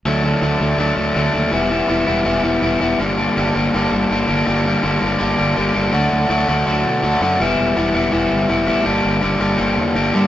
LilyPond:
<<
  \new Staff \with { instrumentName = "Overdriven electric guitar" } { \time 4/4 \key d \major \tempo 4 = 164 <d fis a d'>8 <fis a d'>8 <d fis a d'>8 <fis a d'>8 <d fis a d'>8 <fis a d'>8 <d fis a d'>8 <fis a d'>8 | <e g b e'>8 <g b e'>8 <e g b e'>8 <g b e'>8 <e g b e'>8 <g b e'>8 <e g b e'>8 <g b e'>8 | <g, d g bes d'>8 <g bes d'>8 <g, d g bes d'>8 <g bes d'>8 <g, d g bes d'>8 <g bes d'>8 <d g bes d'>8 <g bes d'>8 | <g, d g bes d'>8 <g bes d'>8 <g, d g bes d'>8 <g bes d'>8 <g, d g bes d'>8 <g bes d'>8 <d g bes d'>8 <g bes d'>8 |
<d fis a d' fis'>4 <d fis a d' fis'>8 <d fis a d' fis'>8 <d fis a d' fis'>4 <d fis a d' fis'>8 <d fis a d' fis'>8 | <e g b e'>4 <e g b e'>8 <e g b e'>8 <e g b e'>4 <e g b e'>8 <e g b e'>8 | <g, d g bes d'>4 <g, d g bes d'>8 <g, d g bes d'>8 <g, d g bes d'>4 <g, d g bes d'>8 <g, d g bes d'>8 | }
  \new Staff \with { instrumentName = "Fingered electric bass" } { \clef bass \time 4/4 \key d \major d,4 d,8 d,8 d,8 d,8 d,8 ees,8 | e,,4 e,,8 e,,8 e,,8 e,,8 e,,8 e,,8 | g,,4 g,,8 g,,8 g,,8 g,,8 g,,8 g,,8 | g,,4 g,,8 g,,8 g,,8 g,,8 g,,8 g,,8 |
d,8 d,8 d,8 d,8 d,8 b,8 d,8 fis,8 | e,,8 e,,8 e,,8 e,,8 e,,8 g,,8 e,,8 a,,8 | g,,8 g,,8 g,,8 g,,8 g,,8 e,8 g,,8 g,8 | }
>>